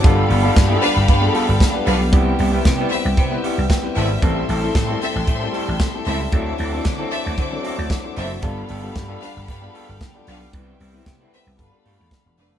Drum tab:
HH |xoxoxoxo|xoxoxoxo|xoxoxoxo|xoxoxoxo|
SD |--o---o-|--o---o-|--o---o-|--o---o-|
BD |o-o-o-o-|o-o-o-o-|o-o-o-o-|o-o-o-o-|

HH |xoxoxoxo|xoxoxoxo|
SD |--o---o-|--o---o-|
BD |o-o-o-o-|o-o-o-o-|